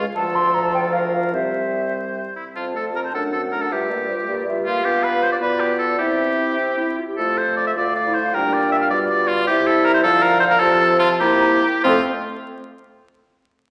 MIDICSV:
0, 0, Header, 1, 6, 480
1, 0, Start_track
1, 0, Key_signature, -1, "major"
1, 0, Tempo, 385109
1, 201, Time_signature, 6, 3, 24, 8
1, 1164, Tempo, 402955
1, 3564, Tempo, 379267
1, 6924, Tempo, 392927
1, 9804, Tempo, 378549
1, 13164, Tempo, 405405
1, 16826, End_track
2, 0, Start_track
2, 0, Title_t, "Flute"
2, 0, Program_c, 0, 73
2, 199, Note_on_c, 0, 81, 108
2, 440, Note_on_c, 0, 84, 102
2, 459, Note_off_c, 0, 81, 0
2, 677, Note_on_c, 0, 82, 91
2, 696, Note_off_c, 0, 84, 0
2, 792, Note_on_c, 0, 81, 93
2, 810, Note_off_c, 0, 82, 0
2, 917, Note_off_c, 0, 81, 0
2, 924, Note_on_c, 0, 79, 92
2, 999, Note_off_c, 0, 79, 0
2, 1159, Note_on_c, 0, 77, 84
2, 1231, Note_off_c, 0, 77, 0
2, 1392, Note_on_c, 0, 77, 76
2, 1635, Note_off_c, 0, 77, 0
2, 1644, Note_on_c, 0, 76, 62
2, 2356, Note_off_c, 0, 76, 0
2, 3095, Note_on_c, 0, 81, 46
2, 3809, Note_on_c, 0, 78, 52
2, 3828, Note_off_c, 0, 81, 0
2, 4542, Note_on_c, 0, 76, 56
2, 4561, Note_off_c, 0, 78, 0
2, 4772, Note_on_c, 0, 74, 52
2, 4791, Note_off_c, 0, 76, 0
2, 5002, Note_off_c, 0, 74, 0
2, 5009, Note_on_c, 0, 72, 58
2, 5085, Note_off_c, 0, 72, 0
2, 5249, Note_on_c, 0, 74, 61
2, 5488, Note_off_c, 0, 74, 0
2, 5496, Note_on_c, 0, 76, 70
2, 5730, Note_off_c, 0, 76, 0
2, 5737, Note_on_c, 0, 77, 77
2, 6667, Note_off_c, 0, 77, 0
2, 6689, Note_on_c, 0, 74, 70
2, 7386, Note_off_c, 0, 74, 0
2, 7395, Note_on_c, 0, 76, 55
2, 8465, Note_off_c, 0, 76, 0
2, 9561, Note_on_c, 0, 77, 69
2, 10277, Note_on_c, 0, 79, 69
2, 10296, Note_off_c, 0, 77, 0
2, 11011, Note_on_c, 0, 74, 75
2, 11030, Note_off_c, 0, 79, 0
2, 11724, Note_off_c, 0, 74, 0
2, 11731, Note_on_c, 0, 76, 83
2, 12441, Note_on_c, 0, 77, 105
2, 12460, Note_off_c, 0, 76, 0
2, 13147, Note_off_c, 0, 77, 0
2, 13155, Note_on_c, 0, 81, 112
2, 13874, Note_on_c, 0, 82, 101
2, 13891, Note_off_c, 0, 81, 0
2, 14248, Note_off_c, 0, 82, 0
2, 14610, Note_on_c, 0, 72, 90
2, 14883, Note_off_c, 0, 72, 0
2, 16826, End_track
3, 0, Start_track
3, 0, Title_t, "Oboe"
3, 0, Program_c, 1, 68
3, 206, Note_on_c, 1, 69, 78
3, 1166, Note_on_c, 1, 70, 62
3, 1184, Note_off_c, 1, 69, 0
3, 1645, Note_off_c, 1, 70, 0
3, 1651, Note_on_c, 1, 72, 52
3, 2841, Note_off_c, 1, 72, 0
3, 2863, Note_on_c, 1, 64, 49
3, 2970, Note_off_c, 1, 64, 0
3, 3103, Note_on_c, 1, 65, 62
3, 3207, Note_off_c, 1, 65, 0
3, 3340, Note_on_c, 1, 69, 55
3, 3442, Note_off_c, 1, 69, 0
3, 3573, Note_on_c, 1, 70, 61
3, 3626, Note_off_c, 1, 70, 0
3, 3692, Note_on_c, 1, 72, 56
3, 3808, Note_off_c, 1, 72, 0
3, 3814, Note_on_c, 1, 69, 64
3, 3922, Note_off_c, 1, 69, 0
3, 4040, Note_on_c, 1, 69, 59
3, 4152, Note_off_c, 1, 69, 0
3, 4286, Note_on_c, 1, 70, 67
3, 4416, Note_on_c, 1, 69, 57
3, 4435, Note_off_c, 1, 70, 0
3, 4542, Note_on_c, 1, 67, 66
3, 4561, Note_off_c, 1, 69, 0
3, 5500, Note_off_c, 1, 67, 0
3, 5729, Note_on_c, 1, 65, 89
3, 5964, Note_on_c, 1, 67, 93
3, 5983, Note_off_c, 1, 65, 0
3, 6209, Note_on_c, 1, 71, 96
3, 6228, Note_off_c, 1, 67, 0
3, 6445, Note_on_c, 1, 72, 100
3, 6464, Note_off_c, 1, 71, 0
3, 6559, Note_off_c, 1, 72, 0
3, 6567, Note_on_c, 1, 74, 88
3, 6620, Note_off_c, 1, 74, 0
3, 6694, Note_on_c, 1, 71, 96
3, 6921, Note_on_c, 1, 67, 84
3, 6939, Note_off_c, 1, 71, 0
3, 7139, Note_off_c, 1, 67, 0
3, 7146, Note_on_c, 1, 69, 88
3, 7384, Note_off_c, 1, 69, 0
3, 7392, Note_on_c, 1, 67, 80
3, 8584, Note_off_c, 1, 67, 0
3, 8844, Note_on_c, 1, 69, 83
3, 9094, Note_on_c, 1, 72, 75
3, 9112, Note_off_c, 1, 69, 0
3, 9315, Note_off_c, 1, 72, 0
3, 9322, Note_on_c, 1, 74, 89
3, 9441, Note_off_c, 1, 74, 0
3, 9449, Note_on_c, 1, 76, 78
3, 9503, Note_off_c, 1, 76, 0
3, 9572, Note_on_c, 1, 74, 90
3, 9793, Note_off_c, 1, 74, 0
3, 9801, Note_on_c, 1, 74, 88
3, 10032, Note_on_c, 1, 72, 86
3, 10051, Note_off_c, 1, 74, 0
3, 10290, Note_on_c, 1, 70, 89
3, 10309, Note_off_c, 1, 72, 0
3, 10528, Note_on_c, 1, 74, 82
3, 10547, Note_off_c, 1, 70, 0
3, 10759, Note_off_c, 1, 74, 0
3, 10767, Note_on_c, 1, 76, 98
3, 10823, Note_off_c, 1, 76, 0
3, 10885, Note_on_c, 1, 77, 90
3, 10941, Note_off_c, 1, 77, 0
3, 11001, Note_on_c, 1, 74, 94
3, 11111, Note_off_c, 1, 74, 0
3, 11244, Note_on_c, 1, 74, 95
3, 11477, Note_on_c, 1, 65, 102
3, 11496, Note_off_c, 1, 74, 0
3, 11705, Note_off_c, 1, 65, 0
3, 11713, Note_on_c, 1, 67, 112
3, 11963, Note_on_c, 1, 69, 106
3, 11982, Note_off_c, 1, 67, 0
3, 12203, Note_on_c, 1, 70, 125
3, 12222, Note_off_c, 1, 69, 0
3, 12308, Note_off_c, 1, 70, 0
3, 12316, Note_on_c, 1, 72, 110
3, 12371, Note_off_c, 1, 72, 0
3, 12433, Note_on_c, 1, 69, 123
3, 12671, Note_on_c, 1, 70, 112
3, 12690, Note_off_c, 1, 69, 0
3, 12887, Note_off_c, 1, 70, 0
3, 12894, Note_on_c, 1, 72, 127
3, 12955, Note_off_c, 1, 72, 0
3, 13027, Note_on_c, 1, 70, 127
3, 13146, Note_on_c, 1, 69, 127
3, 13165, Note_off_c, 1, 70, 0
3, 13611, Note_off_c, 1, 69, 0
3, 13618, Note_on_c, 1, 65, 127
3, 13730, Note_off_c, 1, 65, 0
3, 13866, Note_on_c, 1, 67, 122
3, 14607, Note_off_c, 1, 67, 0
3, 14617, Note_on_c, 1, 65, 110
3, 14820, Note_off_c, 1, 65, 0
3, 16826, End_track
4, 0, Start_track
4, 0, Title_t, "Clarinet"
4, 0, Program_c, 2, 71
4, 200, Note_on_c, 2, 65, 79
4, 1642, Note_on_c, 2, 60, 57
4, 1660, Note_off_c, 2, 65, 0
4, 2861, Note_off_c, 2, 60, 0
4, 3101, Note_on_c, 2, 65, 36
4, 3334, Note_on_c, 2, 69, 37
4, 3352, Note_off_c, 2, 65, 0
4, 3556, Note_on_c, 2, 65, 40
4, 3574, Note_off_c, 2, 69, 0
4, 3789, Note_off_c, 2, 65, 0
4, 3796, Note_on_c, 2, 62, 39
4, 4039, Note_on_c, 2, 66, 36
4, 4058, Note_off_c, 2, 62, 0
4, 4284, Note_on_c, 2, 62, 36
4, 4303, Note_off_c, 2, 66, 0
4, 4515, Note_off_c, 2, 62, 0
4, 4522, Note_on_c, 2, 65, 44
4, 4761, Note_on_c, 2, 67, 46
4, 4780, Note_off_c, 2, 65, 0
4, 5004, Note_on_c, 2, 65, 54
4, 5023, Note_off_c, 2, 67, 0
4, 5242, Note_on_c, 2, 67, 57
4, 5261, Note_off_c, 2, 65, 0
4, 5484, Note_off_c, 2, 67, 0
4, 5492, Note_on_c, 2, 65, 57
4, 5724, Note_on_c, 2, 67, 52
4, 5743, Note_off_c, 2, 65, 0
4, 5955, Note_off_c, 2, 67, 0
4, 5963, Note_on_c, 2, 65, 64
4, 6630, Note_off_c, 2, 65, 0
4, 6675, Note_on_c, 2, 65, 70
4, 7379, Note_off_c, 2, 65, 0
4, 7390, Note_on_c, 2, 64, 54
4, 8055, Note_off_c, 2, 64, 0
4, 8116, Note_on_c, 2, 60, 63
4, 8352, Note_on_c, 2, 64, 59
4, 8370, Note_off_c, 2, 60, 0
4, 8601, Note_off_c, 2, 64, 0
4, 8609, Note_on_c, 2, 65, 57
4, 8664, Note_off_c, 2, 65, 0
4, 8727, Note_on_c, 2, 67, 55
4, 8837, Note_off_c, 2, 67, 0
4, 8845, Note_on_c, 2, 65, 60
4, 9518, Note_off_c, 2, 65, 0
4, 9565, Note_on_c, 2, 65, 58
4, 9723, Note_off_c, 2, 65, 0
4, 9932, Note_on_c, 2, 64, 60
4, 10095, Note_off_c, 2, 64, 0
4, 10296, Note_on_c, 2, 62, 60
4, 11003, Note_off_c, 2, 62, 0
4, 11016, Note_on_c, 2, 65, 68
4, 11711, Note_off_c, 2, 65, 0
4, 11719, Note_on_c, 2, 64, 80
4, 12435, Note_on_c, 2, 65, 95
4, 12455, Note_off_c, 2, 64, 0
4, 13162, Note_off_c, 2, 65, 0
4, 13168, Note_on_c, 2, 65, 94
4, 13875, Note_on_c, 2, 64, 95
4, 13893, Note_off_c, 2, 65, 0
4, 14378, Note_off_c, 2, 64, 0
4, 14631, Note_on_c, 2, 60, 99
4, 14828, Note_off_c, 2, 60, 0
4, 16826, End_track
5, 0, Start_track
5, 0, Title_t, "French horn"
5, 0, Program_c, 3, 60
5, 210, Note_on_c, 3, 53, 78
5, 1652, Note_on_c, 3, 55, 57
5, 1670, Note_off_c, 3, 53, 0
5, 2866, Note_off_c, 3, 55, 0
5, 3098, Note_on_c, 3, 60, 38
5, 3323, Note_on_c, 3, 57, 37
5, 3341, Note_off_c, 3, 60, 0
5, 3552, Note_on_c, 3, 60, 36
5, 3570, Note_off_c, 3, 57, 0
5, 3786, Note_off_c, 3, 60, 0
5, 3794, Note_on_c, 3, 57, 38
5, 4030, Note_on_c, 3, 60, 37
5, 4049, Note_off_c, 3, 57, 0
5, 4275, Note_on_c, 3, 57, 38
5, 4294, Note_off_c, 3, 60, 0
5, 4521, Note_off_c, 3, 57, 0
5, 4528, Note_on_c, 3, 55, 45
5, 4767, Note_on_c, 3, 58, 46
5, 4786, Note_off_c, 3, 55, 0
5, 5006, Note_on_c, 3, 55, 51
5, 5025, Note_off_c, 3, 58, 0
5, 5239, Note_on_c, 3, 58, 52
5, 5258, Note_off_c, 3, 55, 0
5, 5474, Note_off_c, 3, 58, 0
5, 5482, Note_on_c, 3, 55, 53
5, 5723, Note_on_c, 3, 58, 55
5, 5742, Note_off_c, 3, 55, 0
5, 5960, Note_off_c, 3, 58, 0
5, 5967, Note_on_c, 3, 59, 66
5, 6632, Note_off_c, 3, 59, 0
5, 6683, Note_on_c, 3, 59, 62
5, 7383, Note_off_c, 3, 59, 0
5, 7395, Note_on_c, 3, 60, 55
5, 8586, Note_off_c, 3, 60, 0
5, 8860, Note_on_c, 3, 57, 55
5, 9525, Note_off_c, 3, 57, 0
5, 9564, Note_on_c, 3, 57, 56
5, 10287, Note_on_c, 3, 55, 63
5, 10306, Note_off_c, 3, 57, 0
5, 10999, Note_off_c, 3, 55, 0
5, 11007, Note_on_c, 3, 55, 69
5, 11711, Note_off_c, 3, 55, 0
5, 11717, Note_on_c, 3, 55, 74
5, 12438, Note_on_c, 3, 53, 86
5, 12457, Note_off_c, 3, 55, 0
5, 13153, Note_off_c, 3, 53, 0
5, 13160, Note_on_c, 3, 53, 100
5, 13859, Note_off_c, 3, 53, 0
5, 13869, Note_on_c, 3, 58, 92
5, 14364, Note_off_c, 3, 58, 0
5, 14628, Note_on_c, 3, 57, 99
5, 14827, Note_off_c, 3, 57, 0
5, 16826, End_track
6, 0, Start_track
6, 0, Title_t, "Bassoon"
6, 0, Program_c, 4, 70
6, 206, Note_on_c, 4, 38, 89
6, 1639, Note_on_c, 4, 36, 63
6, 1657, Note_off_c, 4, 38, 0
6, 2859, Note_off_c, 4, 36, 0
6, 3097, Note_on_c, 4, 41, 46
6, 3719, Note_off_c, 4, 41, 0
6, 3810, Note_on_c, 4, 42, 54
6, 4452, Note_off_c, 4, 42, 0
6, 4539, Note_on_c, 4, 43, 60
6, 5174, Note_off_c, 4, 43, 0
6, 5254, Note_on_c, 4, 43, 66
6, 5887, Note_off_c, 4, 43, 0
6, 5970, Note_on_c, 4, 43, 72
6, 6682, Note_on_c, 4, 47, 70
6, 6701, Note_off_c, 4, 43, 0
6, 7389, Note_on_c, 4, 48, 62
6, 7407, Note_off_c, 4, 47, 0
6, 8607, Note_off_c, 4, 48, 0
6, 8852, Note_on_c, 4, 41, 59
6, 9565, Note_on_c, 4, 38, 64
6, 9584, Note_off_c, 4, 41, 0
6, 10284, Note_on_c, 4, 46, 70
6, 10303, Note_off_c, 4, 38, 0
6, 11012, Note_on_c, 4, 47, 78
6, 11031, Note_off_c, 4, 46, 0
6, 11724, Note_on_c, 4, 48, 89
6, 11743, Note_off_c, 4, 47, 0
6, 12435, Note_on_c, 4, 50, 100
6, 12454, Note_off_c, 4, 48, 0
6, 13150, Note_off_c, 4, 50, 0
6, 13157, Note_on_c, 4, 48, 114
6, 13857, Note_off_c, 4, 48, 0
6, 13871, Note_on_c, 4, 48, 108
6, 14366, Note_off_c, 4, 48, 0
6, 14629, Note_on_c, 4, 41, 109
6, 14827, Note_off_c, 4, 41, 0
6, 16826, End_track
0, 0, End_of_file